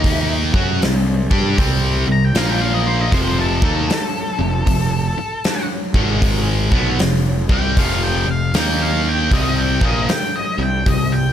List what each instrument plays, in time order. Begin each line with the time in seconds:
Already playing: picked electric bass D#2, distorted electric guitar D#3 A#3 D#4, lead electric guitar D#4
0.04 kick, open hi-hat
0.53 picked electric bass F#2, distorted electric guitar F#3 C#4 F#4, kick
0.81 picked electric bass C2, distorted electric guitar C3 G3, snare, open hi-hat
1.31 picked electric bass G2, distorted electric guitar G3 D4 G4, kick
1.58 picked electric bass C2, distorted electric guitar C3 G3 C4, kick, open hi-hat
2.08 picked electric bass C2, distorted electric guitar C3 G3
2.12 lead electric guitar A#5
2.25 lead electric guitar G5
2.35 picked electric bass A#1, distorted electric guitar A#2 F3 A#3, lead electric guitar F5, snare, open hi-hat
2.49 lead electric guitar G5
2.61 lead electric guitar F5
2.74 lead electric guitar D#5
2.87 lead electric guitar C5
3.00 lead electric guitar D#5
3.12 picked electric bass F1, distorted electric guitar F2 C3 F3, lead electric guitar C5, kick, open hi-hat
3.39 lead electric guitar A4
3.62 picked electric bass D#2, distorted electric guitar D#3 A#3 D#4, kick
3.89 muted picked electric bass stroke, muted distorted electric guitar stroke, snare, open hi-hat
4.39 picked electric bass F1, distorted electric guitar F2 C3
4.66 picked electric bass F1, distorted electric guitar F2 C3, kick, open hi-hat
5.17 muted picked electric bass stroke, muted distorted electric guitar stroke
5.44 snare, open hi-hat
5.94 picked electric bass G#1, distorted electric guitar G#2 D#3 G#3, kick
6.22 kick, open hi-hat
6.71 picked electric bass B1, distorted electric guitar B2 F#3 B3, kick
6.99 picked electric bass F1, distorted electric guitar F2 C3, snare, open hi-hat
7.49 picked electric bass C2, distorted electric guitar C3 G3 C4, lead electric guitar G5, kick
7.77 picked electric bass F1, distorted electric guitar F2 C3 F3, lead electric guitar F5, kick, open hi-hat
8.04 lead electric guitar G5
8.26 picked electric bass F1, distorted electric guitar F2 C3
8.31 lead electric guitar F5
8.54 picked electric bass D#2, distorted electric guitar D#3 A#3 D#4, lead electric guitar G5, snare, open hi-hat
8.82 lead electric guitar F5
9.09 lead electric guitar G5
9.31 picked electric bass C2, distorted electric guitar C3 G3 C4, lead electric guitar D#5, kick, open hi-hat
9.58 lead electric guitar G5
9.81 picked electric bass A#1, distorted electric guitar A#2 F3 A#3, lead electric guitar D#5, kick
10.09 lead electric guitar G5, muted picked electric bass stroke, muted distorted electric guitar stroke, snare, open hi-hat
10.36 lead electric guitar D#5
10.58 picked electric bass C2, distorted electric guitar C3 G3
10.63 lead electric guitar G5
10.86 picked electric bass C2, distorted electric guitar C3 G3, lead electric guitar D#5, kick, open hi-hat
11.12 lead electric guitar G5